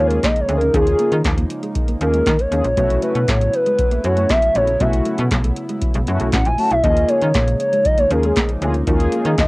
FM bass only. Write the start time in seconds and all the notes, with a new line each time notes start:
Already playing: D#2
0.48 D2
0.74 D#2
1.12 D#3
1.25 D#2
2.01 D#2
2.27 D#3
2.52 D#2
2.64 A#1
2.77 B1
3.15 B2
3.28 A2
4.04 F#2
4.55 A#1
4.81 B1
5.19 B2
5.31 B1
5.95 B1
6.08 F#2
6.21 B1
6.33 A1
6.46 A#1
6.71 B1
6.84 D#2
7.22 D#3
7.35 A#2
8.11 D#2
8.62 D2
8.87 D#2
9.25 D#3
9.38 D#2